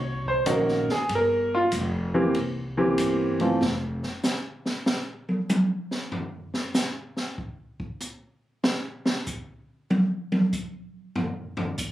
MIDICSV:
0, 0, Header, 1, 5, 480
1, 0, Start_track
1, 0, Tempo, 628733
1, 835, Time_signature, 4, 2, 24, 8
1, 9099, End_track
2, 0, Start_track
2, 0, Title_t, "Grand piano"
2, 0, Program_c, 0, 0
2, 0, Note_on_c, 0, 73, 84
2, 199, Note_off_c, 0, 73, 0
2, 213, Note_on_c, 0, 72, 80
2, 352, Note_on_c, 0, 51, 61
2, 352, Note_on_c, 0, 58, 58
2, 354, Note_on_c, 0, 61, 57
2, 356, Note_on_c, 0, 66, 70
2, 360, Note_off_c, 0, 72, 0
2, 388, Note_on_c, 0, 70, 82
2, 640, Note_off_c, 0, 51, 0
2, 640, Note_off_c, 0, 58, 0
2, 641, Note_off_c, 0, 61, 0
2, 642, Note_off_c, 0, 66, 0
2, 681, Note_off_c, 0, 70, 0
2, 698, Note_on_c, 0, 68, 86
2, 842, Note_off_c, 0, 68, 0
2, 880, Note_on_c, 0, 70, 92
2, 1167, Note_off_c, 0, 70, 0
2, 1180, Note_on_c, 0, 65, 87
2, 1269, Note_off_c, 0, 65, 0
2, 1635, Note_on_c, 0, 52, 75
2, 1637, Note_on_c, 0, 58, 71
2, 1641, Note_on_c, 0, 60, 69
2, 1641, Note_on_c, 0, 67, 76
2, 1779, Note_off_c, 0, 52, 0
2, 1780, Note_off_c, 0, 58, 0
2, 1782, Note_off_c, 0, 60, 0
2, 1782, Note_off_c, 0, 67, 0
2, 2117, Note_on_c, 0, 52, 75
2, 2117, Note_on_c, 0, 58, 68
2, 2122, Note_on_c, 0, 60, 72
2, 2126, Note_on_c, 0, 67, 77
2, 2563, Note_off_c, 0, 52, 0
2, 2564, Note_off_c, 0, 58, 0
2, 2566, Note_off_c, 0, 60, 0
2, 2568, Note_off_c, 0, 67, 0
2, 2597, Note_on_c, 0, 57, 56
2, 2598, Note_on_c, 0, 52, 59
2, 2601, Note_on_c, 0, 60, 57
2, 2604, Note_on_c, 0, 65, 65
2, 2740, Note_off_c, 0, 57, 0
2, 2741, Note_off_c, 0, 52, 0
2, 2742, Note_off_c, 0, 60, 0
2, 2744, Note_off_c, 0, 65, 0
2, 9099, End_track
3, 0, Start_track
3, 0, Title_t, "Upright bass"
3, 0, Program_c, 1, 32
3, 0, Note_on_c, 1, 36, 76
3, 340, Note_off_c, 1, 36, 0
3, 351, Note_on_c, 1, 34, 92
3, 649, Note_off_c, 1, 34, 0
3, 836, Note_on_c, 1, 31, 81
3, 1301, Note_off_c, 1, 31, 0
3, 1317, Note_on_c, 1, 29, 91
3, 1782, Note_off_c, 1, 29, 0
3, 1792, Note_on_c, 1, 36, 76
3, 2259, Note_off_c, 1, 36, 0
3, 2275, Note_on_c, 1, 31, 87
3, 2740, Note_off_c, 1, 31, 0
3, 2754, Note_on_c, 1, 29, 88
3, 3063, Note_off_c, 1, 29, 0
3, 9099, End_track
4, 0, Start_track
4, 0, Title_t, "Muted upright bass strokes"
4, 670, Note_on_c, 9, 29, 38
4, 746, Note_off_c, 9, 29, 0
4, 9099, End_track
5, 0, Start_track
5, 0, Title_t, "Drums"
5, 196, Note_on_c, 9, 36, 51
5, 272, Note_off_c, 9, 36, 0
5, 350, Note_on_c, 9, 44, 60
5, 350, Note_on_c, 9, 51, 66
5, 356, Note_on_c, 9, 36, 20
5, 427, Note_off_c, 9, 44, 0
5, 427, Note_off_c, 9, 51, 0
5, 432, Note_off_c, 9, 36, 0
5, 520, Note_on_c, 9, 38, 27
5, 596, Note_off_c, 9, 38, 0
5, 680, Note_on_c, 9, 38, 44
5, 756, Note_off_c, 9, 38, 0
5, 834, Note_on_c, 9, 51, 59
5, 837, Note_on_c, 9, 36, 25
5, 910, Note_off_c, 9, 51, 0
5, 914, Note_off_c, 9, 36, 0
5, 1310, Note_on_c, 9, 44, 50
5, 1310, Note_on_c, 9, 51, 65
5, 1316, Note_on_c, 9, 36, 27
5, 1386, Note_off_c, 9, 44, 0
5, 1386, Note_off_c, 9, 51, 0
5, 1393, Note_off_c, 9, 36, 0
5, 1790, Note_on_c, 9, 51, 56
5, 1796, Note_on_c, 9, 36, 21
5, 1866, Note_off_c, 9, 51, 0
5, 1873, Note_off_c, 9, 36, 0
5, 2273, Note_on_c, 9, 44, 59
5, 2273, Note_on_c, 9, 51, 75
5, 2276, Note_on_c, 9, 36, 21
5, 2350, Note_off_c, 9, 44, 0
5, 2350, Note_off_c, 9, 51, 0
5, 2353, Note_off_c, 9, 36, 0
5, 2593, Note_on_c, 9, 51, 42
5, 2669, Note_off_c, 9, 51, 0
5, 2759, Note_on_c, 9, 38, 85
5, 2835, Note_off_c, 9, 38, 0
5, 3077, Note_on_c, 9, 38, 37
5, 3153, Note_off_c, 9, 38, 0
5, 3230, Note_on_c, 9, 44, 56
5, 3234, Note_on_c, 9, 38, 90
5, 3306, Note_off_c, 9, 44, 0
5, 3310, Note_off_c, 9, 38, 0
5, 3554, Note_on_c, 9, 38, 47
5, 3631, Note_off_c, 9, 38, 0
5, 3712, Note_on_c, 9, 38, 86
5, 3789, Note_off_c, 9, 38, 0
5, 4036, Note_on_c, 9, 48, 47
5, 4112, Note_off_c, 9, 48, 0
5, 4193, Note_on_c, 9, 44, 56
5, 4196, Note_on_c, 9, 48, 94
5, 4269, Note_off_c, 9, 44, 0
5, 4273, Note_off_c, 9, 48, 0
5, 4513, Note_on_c, 9, 38, 47
5, 4589, Note_off_c, 9, 38, 0
5, 4670, Note_on_c, 9, 43, 87
5, 4747, Note_off_c, 9, 43, 0
5, 4991, Note_on_c, 9, 38, 43
5, 5067, Note_off_c, 9, 38, 0
5, 5146, Note_on_c, 9, 44, 57
5, 5150, Note_on_c, 9, 38, 89
5, 5222, Note_off_c, 9, 44, 0
5, 5226, Note_off_c, 9, 38, 0
5, 5471, Note_on_c, 9, 38, 40
5, 5547, Note_off_c, 9, 38, 0
5, 5634, Note_on_c, 9, 36, 70
5, 5711, Note_off_c, 9, 36, 0
5, 5953, Note_on_c, 9, 36, 74
5, 6029, Note_off_c, 9, 36, 0
5, 6110, Note_on_c, 9, 44, 58
5, 6187, Note_off_c, 9, 44, 0
5, 6594, Note_on_c, 9, 38, 93
5, 6671, Note_off_c, 9, 38, 0
5, 6913, Note_on_c, 9, 38, 84
5, 6990, Note_off_c, 9, 38, 0
5, 7072, Note_on_c, 9, 44, 55
5, 7077, Note_on_c, 9, 36, 80
5, 7148, Note_off_c, 9, 44, 0
5, 7153, Note_off_c, 9, 36, 0
5, 7562, Note_on_c, 9, 48, 89
5, 7638, Note_off_c, 9, 48, 0
5, 7878, Note_on_c, 9, 48, 87
5, 7955, Note_off_c, 9, 48, 0
5, 8035, Note_on_c, 9, 44, 61
5, 8037, Note_on_c, 9, 36, 75
5, 8111, Note_off_c, 9, 44, 0
5, 8113, Note_off_c, 9, 36, 0
5, 8517, Note_on_c, 9, 43, 99
5, 8593, Note_off_c, 9, 43, 0
5, 8832, Note_on_c, 9, 43, 89
5, 8909, Note_off_c, 9, 43, 0
5, 8990, Note_on_c, 9, 44, 56
5, 8995, Note_on_c, 9, 36, 76
5, 9066, Note_off_c, 9, 44, 0
5, 9072, Note_off_c, 9, 36, 0
5, 9099, End_track
0, 0, End_of_file